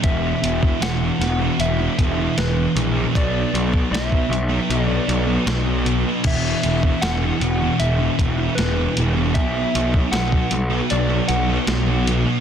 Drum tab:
CC |----------------|----------------|x---------------|----------------|
HH |x-x-x-x-x-x-x-x-|x-x-x-x-x-x-x-x-|--x-x-x-x-x-x-x-|x-x-x-x-x-x-x-x-|
SD |----o-o-----o---|----o-------o---|----o-------o---|----o-------o---|
BD |o--o------o-----|o--o-o----------|o--o------o-----|o--o-o----------|